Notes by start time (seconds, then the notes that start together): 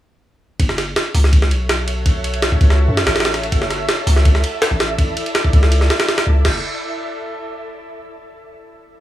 0.59 F#1 F#4 A4 C#5 E5, kick, ride
0.69 snare
0.78 snare, ride
0.96 snare, ride
1.15 C#2, open hi-hat
1.24 snare
1.33 kick, ride
1.42 snare
1.51 B1, ride
1.69 snare, ride
1.88 ride
2.06 kick, ride
2.24 ride
2.34 ride
2.42 snare, ride
2.52 kick
2.61 C#2, kick, ride
2.70 snare
2.88 F#2
2.97 snare, ride
3.07 A1, snare, ride
3.16 snare, ride
3.20 snare, ride
3.25 snare, ride
3.34 snare, ride
3.43 ride
3.52 F#1 E4 D5, kick, ride
3.62 snare
3.70 snare, ride
3.89 snare, ride
4.07 C#2, open hi-hat
4.16 snare
4.25 kick, ride
4.35 snare
4.44 ride
4.62 snare, ride
4.71 A1
4.80 snare, ride
4.99 kick, ride
5.17 ride
5.26 ride
5.35 snare, ride
5.45 kick
5.53 C#2, kick, ride
5.63 snare
5.72 ride
5.81 snare
5.90 snare, ride
6.00 snare, ride
6.09 snare, ride
6.18 snare, ride
6.27 C#2
6.45 F#1, kick, snare, crash